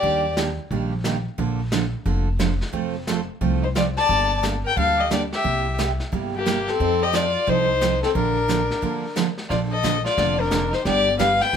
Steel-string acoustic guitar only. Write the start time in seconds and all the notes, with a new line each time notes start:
0.03 D#3 G3 A#3 D4 G4
0.37 D#3 G3 A#3 D4 G4
0.71 D#3 G3 A#3 D4 G4
1.05 D#3 G3 A#3 D4 G4
1.38 D3 F3 A#3 D4 A4
1.72 D3 F3 A#3 D4 A4
2.05 D3 F3 A#3 D4 A4
2.39 D3 F3 A#3 D4 A4
2.73 F3 A3 C4 F4 A4
3.08 F3 A3 C4 F4 A4
3.41 F3 A3 C4 F4 A4
3.75 F3 A3 C4 F4 A4
4.08 D3 G3 A#3 D4 A4
4.43 D3 G3 A#3 D4 A4
4.77 D3 G3 A#3 D4 A4
5.10 D3 G3 A#3 D4 A4
5.44 C3 G3 A#3 E4 G4
5.78 C3 G3 A#3 E4 G4
6.12 C3 G3 A#3 E4 G4
6.46 C3 G3 A#3 E4 G4
6.80 F3 C4 D#4 A4
7.13 F3 C4 D#4 A4
7.47 F3 C4 D#4 A4
7.81 F3 C4 D#4 A4
8.15 D3 F3 A#3 D4 A4
8.48 D3 F3 A#3 D4 A4
8.82 D3 F3 A#3 D4 A4
9.16 D3 F3 A#3 D4 A4
9.51 D3 F3 A#3 D4 A4
9.83 D3 F3 A#3 D4 A4
10.18 D3 F3 A#3 D4 A4
10.51 D3 F3 A#3 D4 A4
10.86 D3 G3 B3 D4 G4
11.19 D3 G3 B3 D4 G4